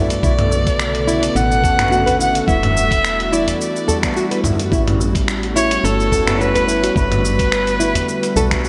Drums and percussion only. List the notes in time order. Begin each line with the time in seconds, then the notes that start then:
0.10 closed hi-hat, cabasa
0.23 kick, cabasa
0.39 closed hi-hat, mid tom
0.52 cabasa
0.67 kick, closed hi-hat, cabasa
0.80 finger snap, cabasa
0.95 closed hi-hat
1.08 cabasa
1.23 closed hi-hat, cabasa
1.36 cabasa
1.52 cabasa
1.64 kick, udu, cabasa
1.79 finger snap, closed hi-hat, mid tom, cabasa
1.92 cabasa
2.07 closed hi-hat, udu, cabasa
2.21 cabasa
2.35 closed hi-hat, cabasa
2.48 kick, cabasa
2.63 closed hi-hat, mid tom
2.77 cabasa
2.91 kick, closed hi-hat, cabasa
3.05 finger snap, cabasa
3.20 closed hi-hat
3.33 cabasa
3.47 closed hi-hat, udu, cabasa
3.61 cabasa
3.76 cabasa
3.88 udu, cabasa
4.03 finger snap, kick, closed hi-hat, cabasa
4.17 cabasa
4.31 closed hi-hat, cabasa
4.44 kick, mid tom, udu, cabasa
4.59 closed hi-hat, cabasa
4.72 kick, cabasa
4.88 closed hi-hat, mid tom
5.01 cabasa
5.15 kick, closed hi-hat, cabasa
5.28 finger snap, cabasa
5.43 closed hi-hat
5.57 cabasa
5.71 closed hi-hat, cabasa
5.85 cabasa
6.00 cabasa
6.11 kick, udu, cabasa
6.27 finger snap, closed hi-hat, mid tom, cabasa
6.41 cabasa
6.55 closed hi-hat, udu, cabasa
6.69 cabasa
6.84 closed hi-hat, cabasa
6.96 kick, cabasa
7.12 closed hi-hat, mid tom, cabasa
7.25 cabasa
7.39 kick, closed hi-hat, cabasa
7.52 finger snap, cabasa
7.67 closed hi-hat, cabasa
7.80 cabasa
7.95 closed hi-hat, udu, cabasa
8.09 cabasa
8.23 closed hi-hat, cabasa
8.36 udu, cabasa
8.51 finger snap, kick, closed hi-hat, cabasa
8.64 cabasa